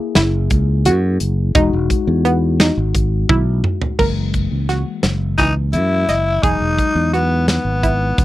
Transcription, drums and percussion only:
0, 0, Header, 1, 2, 480
1, 0, Start_track
1, 0, Tempo, 697674
1, 1071, Time_signature, 7, 3, 24, 8
1, 5675, End_track
2, 0, Start_track
2, 0, Title_t, "Drums"
2, 105, Note_on_c, 9, 38, 99
2, 105, Note_on_c, 9, 42, 76
2, 174, Note_off_c, 9, 38, 0
2, 174, Note_off_c, 9, 42, 0
2, 346, Note_on_c, 9, 42, 57
2, 349, Note_on_c, 9, 36, 69
2, 415, Note_off_c, 9, 42, 0
2, 417, Note_off_c, 9, 36, 0
2, 588, Note_on_c, 9, 42, 82
2, 657, Note_off_c, 9, 42, 0
2, 827, Note_on_c, 9, 42, 65
2, 896, Note_off_c, 9, 42, 0
2, 1066, Note_on_c, 9, 42, 82
2, 1068, Note_on_c, 9, 36, 104
2, 1135, Note_off_c, 9, 42, 0
2, 1137, Note_off_c, 9, 36, 0
2, 1308, Note_on_c, 9, 36, 64
2, 1309, Note_on_c, 9, 42, 57
2, 1377, Note_off_c, 9, 36, 0
2, 1378, Note_off_c, 9, 42, 0
2, 1549, Note_on_c, 9, 42, 54
2, 1618, Note_off_c, 9, 42, 0
2, 1788, Note_on_c, 9, 38, 95
2, 1788, Note_on_c, 9, 42, 84
2, 1857, Note_off_c, 9, 38, 0
2, 1857, Note_off_c, 9, 42, 0
2, 2027, Note_on_c, 9, 36, 64
2, 2028, Note_on_c, 9, 42, 63
2, 2096, Note_off_c, 9, 36, 0
2, 2097, Note_off_c, 9, 42, 0
2, 2266, Note_on_c, 9, 36, 103
2, 2266, Note_on_c, 9, 48, 61
2, 2335, Note_off_c, 9, 36, 0
2, 2335, Note_off_c, 9, 48, 0
2, 2503, Note_on_c, 9, 45, 86
2, 2572, Note_off_c, 9, 45, 0
2, 2625, Note_on_c, 9, 43, 79
2, 2694, Note_off_c, 9, 43, 0
2, 2745, Note_on_c, 9, 49, 82
2, 2746, Note_on_c, 9, 36, 89
2, 2814, Note_off_c, 9, 49, 0
2, 2815, Note_off_c, 9, 36, 0
2, 2984, Note_on_c, 9, 42, 49
2, 2986, Note_on_c, 9, 36, 57
2, 3052, Note_off_c, 9, 42, 0
2, 3054, Note_off_c, 9, 36, 0
2, 3226, Note_on_c, 9, 38, 27
2, 3226, Note_on_c, 9, 42, 45
2, 3295, Note_off_c, 9, 38, 0
2, 3295, Note_off_c, 9, 42, 0
2, 3460, Note_on_c, 9, 38, 84
2, 3460, Note_on_c, 9, 42, 65
2, 3529, Note_off_c, 9, 38, 0
2, 3529, Note_off_c, 9, 42, 0
2, 3704, Note_on_c, 9, 38, 29
2, 3704, Note_on_c, 9, 42, 50
2, 3705, Note_on_c, 9, 36, 57
2, 3773, Note_off_c, 9, 38, 0
2, 3773, Note_off_c, 9, 42, 0
2, 3774, Note_off_c, 9, 36, 0
2, 3943, Note_on_c, 9, 42, 70
2, 4011, Note_off_c, 9, 42, 0
2, 4187, Note_on_c, 9, 38, 29
2, 4187, Note_on_c, 9, 42, 53
2, 4255, Note_off_c, 9, 38, 0
2, 4255, Note_off_c, 9, 42, 0
2, 4427, Note_on_c, 9, 36, 94
2, 4427, Note_on_c, 9, 42, 70
2, 4496, Note_off_c, 9, 36, 0
2, 4496, Note_off_c, 9, 42, 0
2, 4668, Note_on_c, 9, 36, 64
2, 4671, Note_on_c, 9, 42, 49
2, 4737, Note_off_c, 9, 36, 0
2, 4740, Note_off_c, 9, 42, 0
2, 4912, Note_on_c, 9, 42, 48
2, 4981, Note_off_c, 9, 42, 0
2, 5147, Note_on_c, 9, 38, 84
2, 5147, Note_on_c, 9, 42, 74
2, 5216, Note_off_c, 9, 38, 0
2, 5216, Note_off_c, 9, 42, 0
2, 5389, Note_on_c, 9, 36, 56
2, 5390, Note_on_c, 9, 42, 53
2, 5458, Note_off_c, 9, 36, 0
2, 5459, Note_off_c, 9, 42, 0
2, 5629, Note_on_c, 9, 36, 92
2, 5631, Note_on_c, 9, 42, 75
2, 5675, Note_off_c, 9, 36, 0
2, 5675, Note_off_c, 9, 42, 0
2, 5675, End_track
0, 0, End_of_file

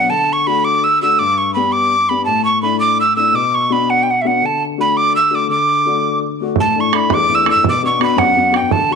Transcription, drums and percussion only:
0, 0, Header, 1, 2, 480
1, 0, Start_track
1, 0, Key_signature, 2, "major"
1, 0, Tempo, 358637
1, 147, Time_signature, 6, 3, 24, 8
1, 11983, End_track
2, 0, Start_track
2, 0, Title_t, "Bodhran"
2, 8777, Note_on_c, 9, 64, 78
2, 8911, Note_off_c, 9, 64, 0
2, 9274, Note_on_c, 9, 64, 59
2, 9408, Note_off_c, 9, 64, 0
2, 9503, Note_on_c, 9, 64, 80
2, 9637, Note_off_c, 9, 64, 0
2, 9758, Note_on_c, 9, 64, 24
2, 9891, Note_off_c, 9, 64, 0
2, 9989, Note_on_c, 9, 64, 55
2, 10112, Note_off_c, 9, 64, 0
2, 10112, Note_on_c, 9, 64, 27
2, 10232, Note_off_c, 9, 64, 0
2, 10232, Note_on_c, 9, 64, 84
2, 10365, Note_off_c, 9, 64, 0
2, 10721, Note_on_c, 9, 64, 53
2, 10855, Note_off_c, 9, 64, 0
2, 10952, Note_on_c, 9, 64, 82
2, 11086, Note_off_c, 9, 64, 0
2, 11210, Note_on_c, 9, 64, 22
2, 11344, Note_off_c, 9, 64, 0
2, 11429, Note_on_c, 9, 64, 46
2, 11544, Note_off_c, 9, 64, 0
2, 11544, Note_on_c, 9, 64, 23
2, 11662, Note_off_c, 9, 64, 0
2, 11662, Note_on_c, 9, 64, 77
2, 11796, Note_off_c, 9, 64, 0
2, 11983, End_track
0, 0, End_of_file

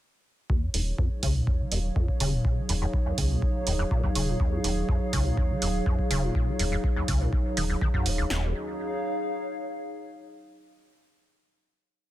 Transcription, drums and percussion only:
0, 0, Header, 1, 2, 480
1, 0, Start_track
1, 0, Key_signature, -6, "minor"
1, 0, Tempo, 487805
1, 490, Time_signature, 4, 2, 24, 8
1, 11914, End_track
2, 0, Start_track
2, 0, Title_t, "Drums"
2, 489, Note_on_c, 9, 36, 111
2, 587, Note_off_c, 9, 36, 0
2, 728, Note_on_c, 9, 46, 102
2, 826, Note_off_c, 9, 46, 0
2, 969, Note_on_c, 9, 36, 111
2, 1067, Note_off_c, 9, 36, 0
2, 1208, Note_on_c, 9, 46, 94
2, 1209, Note_on_c, 9, 36, 83
2, 1306, Note_off_c, 9, 46, 0
2, 1307, Note_off_c, 9, 36, 0
2, 1449, Note_on_c, 9, 36, 108
2, 1547, Note_off_c, 9, 36, 0
2, 1688, Note_on_c, 9, 46, 97
2, 1787, Note_off_c, 9, 46, 0
2, 1929, Note_on_c, 9, 36, 106
2, 2027, Note_off_c, 9, 36, 0
2, 2051, Note_on_c, 9, 36, 58
2, 2150, Note_off_c, 9, 36, 0
2, 2168, Note_on_c, 9, 46, 94
2, 2266, Note_off_c, 9, 46, 0
2, 2409, Note_on_c, 9, 36, 115
2, 2507, Note_off_c, 9, 36, 0
2, 2648, Note_on_c, 9, 46, 98
2, 2747, Note_off_c, 9, 46, 0
2, 2889, Note_on_c, 9, 36, 111
2, 2987, Note_off_c, 9, 36, 0
2, 3128, Note_on_c, 9, 46, 103
2, 3129, Note_on_c, 9, 36, 84
2, 3226, Note_off_c, 9, 46, 0
2, 3227, Note_off_c, 9, 36, 0
2, 3369, Note_on_c, 9, 36, 111
2, 3467, Note_off_c, 9, 36, 0
2, 3608, Note_on_c, 9, 46, 103
2, 3707, Note_off_c, 9, 46, 0
2, 3849, Note_on_c, 9, 36, 116
2, 3947, Note_off_c, 9, 36, 0
2, 3972, Note_on_c, 9, 36, 63
2, 4070, Note_off_c, 9, 36, 0
2, 4088, Note_on_c, 9, 46, 99
2, 4186, Note_off_c, 9, 46, 0
2, 4329, Note_on_c, 9, 36, 116
2, 4427, Note_off_c, 9, 36, 0
2, 4568, Note_on_c, 9, 46, 100
2, 4667, Note_off_c, 9, 46, 0
2, 4809, Note_on_c, 9, 36, 120
2, 4907, Note_off_c, 9, 36, 0
2, 5048, Note_on_c, 9, 46, 103
2, 5049, Note_on_c, 9, 36, 84
2, 5147, Note_off_c, 9, 36, 0
2, 5147, Note_off_c, 9, 46, 0
2, 5289, Note_on_c, 9, 36, 120
2, 5387, Note_off_c, 9, 36, 0
2, 5529, Note_on_c, 9, 46, 112
2, 5628, Note_off_c, 9, 46, 0
2, 5769, Note_on_c, 9, 36, 121
2, 5867, Note_off_c, 9, 36, 0
2, 5892, Note_on_c, 9, 36, 61
2, 5990, Note_off_c, 9, 36, 0
2, 6009, Note_on_c, 9, 46, 106
2, 6107, Note_off_c, 9, 46, 0
2, 6249, Note_on_c, 9, 36, 122
2, 6347, Note_off_c, 9, 36, 0
2, 6489, Note_on_c, 9, 46, 106
2, 6587, Note_off_c, 9, 46, 0
2, 6729, Note_on_c, 9, 36, 113
2, 6827, Note_off_c, 9, 36, 0
2, 6968, Note_on_c, 9, 46, 98
2, 6969, Note_on_c, 9, 36, 89
2, 7067, Note_off_c, 9, 46, 0
2, 7068, Note_off_c, 9, 36, 0
2, 7209, Note_on_c, 9, 36, 122
2, 7308, Note_off_c, 9, 36, 0
2, 7449, Note_on_c, 9, 46, 107
2, 7548, Note_off_c, 9, 46, 0
2, 7689, Note_on_c, 9, 36, 121
2, 7788, Note_off_c, 9, 36, 0
2, 7812, Note_on_c, 9, 36, 61
2, 7910, Note_off_c, 9, 36, 0
2, 7929, Note_on_c, 9, 46, 104
2, 8028, Note_off_c, 9, 46, 0
2, 8169, Note_on_c, 9, 38, 102
2, 8267, Note_off_c, 9, 38, 0
2, 11914, End_track
0, 0, End_of_file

